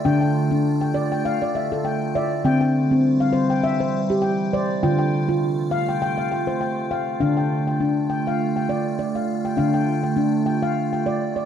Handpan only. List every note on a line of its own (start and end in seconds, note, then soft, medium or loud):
0.00 0.22 E5 medium
0.05 2.41 D3 medium
0.05 0.35 D4 medium
0.05 0.20 G5 medium
0.21 0.65 G5 medium
0.51 0.82 D4 medium
0.81 1.11 G5 medium
0.94 1.25 D5 medium
1.12 1.55 G5 medium
1.25 1.55 F5 medium
1.42 1.85 D5 medium
1.55 2.02 E5 medium
1.72 2.02 A4 medium
1.85 2.31 G5 medium
2.15 2.45 D5 medium
2.15 2.61 E5 medium
2.44 4.79 D3 medium
2.44 2.75 C4 medium
2.44 2.60 G5 medium
2.61 3.04 G5 medium
2.91 3.21 C4 medium
3.20 3.64 F5 medium
3.33 3.63 C5 medium
3.50 3.93 G5 medium
3.64 3.94 E5 medium
3.80 4.24 C5 medium
4.10 4.40 G4 medium
4.22 4.69 G5 medium
4.53 4.83 C5 medium
4.53 4.99 D5 medium
4.83 7.17 D3 medium
4.83 5.13 F4 medium
4.83 4.97 G5 medium
4.99 5.42 G5 medium
5.29 5.59 F4 medium
5.71 6.01 F5 medium
5.89 6.01 G5 medium
6.02 6.30 G5 medium
6.18 6.61 F5 medium
6.32 6.60 G5 medium
6.47 6.77 C5 medium
6.61 6.90 G5 medium
6.91 7.19 F5 medium
6.91 7.36 G5 medium
7.20 9.55 D3 medium
7.20 7.50 D4 medium
7.20 7.67 F5 medium
7.37 7.66 G5 medium
7.67 8.09 G5 soft
7.80 8.10 D4 medium
8.10 8.55 G5 medium
8.27 8.57 F5 medium
8.56 8.99 G5 medium
8.69 8.98 D5 medium
8.99 9.45 D5 medium
9.15 9.17 F5 medium
9.45 9.73 G5 medium
9.57 11.45 D3 medium
9.57 9.87 D4 medium
9.57 10.04 F5 medium
9.74 10.02 G5 medium
10.03 10.45 G5 soft
10.17 10.47 D4 medium
10.46 10.92 G5 medium
10.62 10.93 F5 medium
10.93 11.36 G5 medium
11.06 11.35 D5 medium
11.36 11.45 D5 medium